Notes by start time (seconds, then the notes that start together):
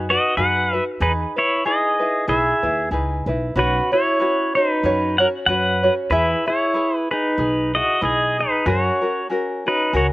Already playing: F#2
0.10 D#4 F#4 B4 D#5
0.37 F#2 D#4 F#4 G#4 B4 F#5
0.73 D#4 F#4 B4
1.00 E2 D#4 G#4 B4
1.36 E4 B4 C#5
1.65 D#4 E4 G#4 B4 D#5
2.00 D#4 E4 B4
2.28 B1 E4 G#4 B4 E5
2.63 D#2 E4 B4
2.91 C#2 D#4 E4 G#4 B4
3.26 B1 D#4 E4 B4
3.56 B1 C#4 F#4 B4 C#5
3.60 F#4
3.92 C#4 E4 F#4 C#5
4.20 C#4 F#4 B4 C#5
4.55 C#4 D#4 F#4 B4 C#5
4.83 F#2 C#4 F#4 B4 C#5
5.18 C#4 F#4 A#4 C#5 F#5
5.46 F#2 C#4 F#4 B4 C#5 F#5
5.83 C#4 F#4 C#5
6.10 E2 E4 G#4 B4 E5
6.46 E4 G#4 C#5 E5
6.74 E4 G#4 B4 E5
6.97 B4
7.11 D#4 G#4 B4
7.37 B1 G#4 B4
7.74 E4 F#4 G#4 D#5
8.01 B1 E4 G#4 B4 D#5
8.38 D#4 G#4 B4
8.66 F#2 C#4 F#4 G#4 A#4 C#5
9.02 C#4 F#4 A#4
9.29 C#4 F#4 G#4 A#4
9.66 C#4 D#4 F#4 B4
9.93 C#2 C#4 F#4 G#4 A#4 C#5